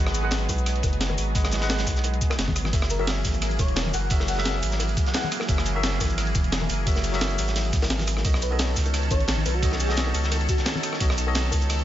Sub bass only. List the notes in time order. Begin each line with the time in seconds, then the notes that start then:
Already playing: G#1
0.49 B1
0.83 F#1
1.18 G#1
1.87 B1
2.38 F#1
2.56 G#1
2.73 F#1
3.25 G#1
3.59 E1
3.94 F#1
4.63 G#1
5.49 F#1
6.00 G#1
6.35 E1
6.69 F#1
7.38 G#1
7.73 A#1
7.82 G#1
8.25 B1
8.76 C#2
9.11 A1
9.45 B1
10.14 C#2
11.00 B1
11.52 C#2